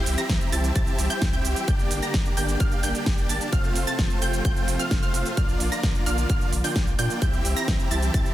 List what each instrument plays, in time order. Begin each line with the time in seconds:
Already playing: string section E3 G3 C4 G4, supersaw synth C4 E4 G4 E5 G5, synth pluck G6
0.06 sub bass C2, open hi-hat, cabasa
0.18 supersaw synth C4 E4 G4 E5 A#5, synth pluck A#6, closed hi-hat, cabasa
0.29 sub bass C2, kick, snare, closed hi-hat, cabasa
0.41 closed hi-hat, cabasa
0.52 sub bass C2, supersaw synth C4 E4 G4 E5 A5, synth pluck A6, open hi-hat, cabasa
0.64 closed hi-hat, cabasa
0.76 sub bass C2, supersaw synth C4 E4 G4 E5 A5, synth pluck A6, kick, closed hi-hat, cabasa
0.87 closed hi-hat, cabasa
0.99 sub bass C2, open hi-hat, cabasa
1.10 supersaw synth C4 E4 G4 E5 G5, synth pluck G6, closed hi-hat, cabasa
1.22 sub bass C2, kick, snare, closed hi-hat, cabasa
1.33 supersaw synth C4 E4 G4 E5 G5, synth pluck G6, closed hi-hat, cabasa
1.45 sub bass C2, open hi-hat, cabasa
1.56 closed hi-hat, cabasa
1.68 sub bass G1, string section D3 A#3, supersaw synth A#3 D4 D5, synth pluck G6, kick, closed hi-hat, cabasa
1.79 closed hi-hat, cabasa
1.91 sub bass G1, open hi-hat, cabasa
2.02 supersaw synth A#3 D4 G4 D5 A#5, synth pluck A#6, closed hi-hat, cabasa
2.14 sub bass G1, kick, snare, closed hi-hat, cabasa
2.26 closed hi-hat, cabasa
2.37 sub bass G1, supersaw synth A#3 D4 G4 D5 G5, synth pluck G6, open hi-hat, cabasa
2.49 closed hi-hat, cabasa
2.60 sub bass G1, synth pluck F6, kick, closed hi-hat, cabasa
2.72 closed hi-hat, cabasa
2.83 sub bass G1, supersaw synth A#3 D4 G4 D5 G5, synth pluck G6, open hi-hat, cabasa
2.95 closed hi-hat, cabasa
3.06 sub bass G1, kick, snare, closed hi-hat, cabasa
3.18 closed hi-hat, cabasa
3.29 sub bass G1, supersaw synth A#3 D4 G4 D5 A5, synth pluck A6, open hi-hat, cabasa
3.41 closed hi-hat, cabasa
3.52 sub bass F1, string section C3 F3 A3 F4, supersaw synth A3 C4 F4 C5 F5, synth pluck F6, kick, closed hi-hat, cabasa
3.64 closed hi-hat, cabasa
3.76 sub bass F1, open hi-hat, cabasa
3.87 supersaw synth A3 C4 F4 C5 A5, synth pluck A6, closed hi-hat, cabasa
3.99 sub bass F1, kick, snare, closed hi-hat, cabasa
4.10 closed hi-hat, cabasa
4.22 sub bass F1, supersaw synth A3 C4 F4 C5 G5, synth pluck G6, open hi-hat, cabasa
4.33 closed hi-hat, cabasa
4.45 sub bass F1, supersaw synth A3 C4 F4 C5 G5, synth pluck G6, kick, closed hi-hat, cabasa
4.56 closed hi-hat, cabasa
4.68 sub bass F1, open hi-hat, cabasa
4.79 supersaw synth A3 C4 F4 C5 F5, synth pluck F6, closed hi-hat, cabasa
4.91 sub bass F1, kick, snare, closed hi-hat, cabasa
5.03 supersaw synth A3 C4 F4 C5 F5, synth pluck F6, closed hi-hat, cabasa
5.14 sub bass F1, open hi-hat, cabasa
5.26 closed hi-hat, cabasa
5.37 sub bass A#1, string section D3 A#3, supersaw synth A#3 F4, synth pluck F6, kick, closed hi-hat, cabasa
5.49 closed hi-hat, cabasa
5.60 sub bass A#1, open hi-hat, cabasa
5.72 supersaw synth A#3 D4 F4 D5 A#5, synth pluck A#6, closed hi-hat, cabasa
5.83 sub bass A#1, kick, snare, closed hi-hat, cabasa
5.95 closed hi-hat, cabasa
6.06 sub bass A#1, supersaw synth A#3 D4 F4 D5 F5, synth pluck F6, open hi-hat, cabasa
6.18 closed hi-hat, cabasa
6.29 sub bass A#1, supersaw synth A#3 D4 F4, synth pluck F6, kick, closed hi-hat, cabasa
6.41 closed hi-hat, cabasa
6.53 sub bass A#1, open hi-hat, cabasa
6.64 supersaw synth A#3 D4 F4 D5 G5, synth pluck G6, open hi-hat, cabasa
6.76 sub bass A#1, kick, snare, closed hi-hat, cabasa
6.87 closed hi-hat, cabasa
6.99 sub bass A#2, supersaw synth A#3 D4 F4 D5 G5, synth pluck G6, open hi-hat, cabasa
7.10 closed hi-hat, cabasa
7.22 sub bass C2, string section E3 G3 C4 G4, supersaw synth C4 E4 G4 E5 G5, synth pluck G6, kick, closed hi-hat, cabasa
7.33 closed hi-hat, cabasa
7.45 sub bass C2, open hi-hat, cabasa
7.56 supersaw synth C4 E4 G4 E5 A#5, synth pluck A#6, closed hi-hat, cabasa
7.68 sub bass C2, kick, snare, closed hi-hat, cabasa
7.80 closed hi-hat, cabasa
7.91 sub bass C2, supersaw synth C4 E4 G4 E5 A5, synth pluck A6, open hi-hat, cabasa
8.03 closed hi-hat, cabasa
8.14 sub bass C2, supersaw synth C4 E4 G4 E5 A5, synth pluck A6, kick, closed hi-hat, cabasa
8.26 closed hi-hat, cabasa